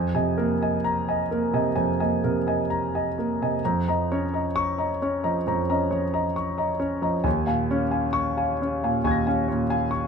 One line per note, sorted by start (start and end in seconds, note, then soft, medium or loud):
0.00 1.72 F2 medium
0.00 0.13 G#5 medium
0.14 0.52 C3 soft
0.14 0.35 D#5 medium
0.14 0.35 G#5 medium
0.37 0.75 A#3 medium
0.37 0.75 A#4 medium
0.61 0.82 D#5 soft
0.61 0.83 G#5 medium
0.84 1.21 A#5 medium
1.08 1.28 D#5 soft
1.08 1.28 G#5 medium
1.31 1.67 A#3 soft
1.31 1.67 A#4 medium
1.53 1.89 C3 medium
1.53 1.73 D#5 medium
1.53 1.74 G#5 soft
1.76 3.57 F2 medium
1.76 1.99 G#5 medium
2.00 2.35 A#3 medium
2.00 2.20 D#5 soft
2.00 2.20 G#5 medium
2.24 2.59 C3 soft
2.24 2.59 A#4 medium
2.47 2.66 D#5 soft
2.47 2.67 G#5 medium
2.70 3.06 A#5 medium
2.95 3.14 D#5 soft
2.95 3.14 G#5 soft
3.18 3.53 A#3 soft
3.18 3.53 A#4 soft
3.42 3.62 C3 soft
3.42 3.60 D#5 soft
3.42 3.61 G#5 soft
3.65 5.42 F2 medium
3.65 3.87 A#5 medium
3.88 4.23 F3 soft
3.88 4.07 D#5 medium
3.88 4.07 A#5 medium
4.12 4.46 C#4 medium
4.12 4.46 C#5 medium
4.34 4.52 D#5 soft
4.34 4.53 A#5 soft
4.56 4.91 C#6 medium
4.78 4.97 D#5 soft
4.78 4.98 A#5 medium
5.02 5.37 C#4 medium
5.02 5.37 C#5 medium
5.23 5.59 F3 medium
5.23 5.43 D#5 soft
5.23 5.43 A#5 medium
5.47 7.23 F2 medium
5.47 5.68 A#5 medium
5.70 6.04 C#4 soft
5.70 5.89 D#5 soft
5.70 5.89 A#5 medium
5.91 6.26 F3 soft
5.91 6.26 C#5 medium
6.13 6.33 D#5 soft
6.13 6.33 A#5 medium
6.36 6.71 C#6 medium
6.58 6.78 D#5 soft
6.58 6.78 A#5 soft
6.79 7.16 C#4 medium
6.79 7.16 C#5 medium
7.02 7.25 F3 soft
7.02 7.23 D#5 soft
7.02 7.23 A#5 soft
7.24 9.02 D#2 medium
7.24 7.46 G#5 medium
7.47 7.84 A#2 medium
7.47 7.68 F5 medium
7.47 7.68 G#5 medium
7.71 8.07 C#4 medium
7.71 8.07 C#5 medium
7.91 8.12 F5 soft
7.91 8.13 G#5 medium
8.13 8.51 C#6 medium
8.37 8.59 F5 soft
8.37 8.59 G#5 medium
8.61 8.98 C#4 medium
8.61 8.99 C#5 soft
8.84 9.20 A#2 soft
8.84 9.04 F5 soft
8.84 9.03 G#5 medium
9.04 10.07 D#2 medium
9.04 9.25 G#5 medium
9.04 9.89 C#6 soft
9.04 10.07 G#6 soft
9.11 10.07 A#6 soft
9.27 9.63 C#4 soft
9.27 9.48 F5 medium
9.27 9.47 G#5 medium
9.48 9.85 A#2 medium
9.48 9.84 C#5 medium
9.70 9.90 F5 soft
9.70 9.91 G#5 medium
9.91 10.07 C#6 medium